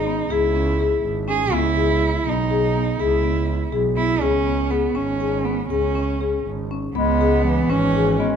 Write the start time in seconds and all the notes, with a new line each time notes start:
Already playing: G#1 D#4
0.06 B3
0.30 C#2 E4 G#4
0.55 C#4
0.80 G#4
1.03 G#1
1.28 C#4 G#4
1.52 C#2 B3 E4
1.77 G#4
2.26 B1 B3 D#4
2.50 G#4
2.75 B3
2.99 C#2 E4 G#4
3.23 B3
3.73 B1 G#4
3.97 B3 E4
4.21 C#2 C#4 G#4
4.46 B3
4.71 B3 G#4
4.95 G#1 C#4
5.20 G#4
5.45 B3
5.70 C#2 C#4 G#4
5.95 C#4
6.21 G#4
6.45 G#1
6.71 C#4
6.95 C#2 G#3 B3 B5
7.21 G#4
7.44 E3
7.69 G#1 C#4
7.95 G#4
8.19 G#3 B3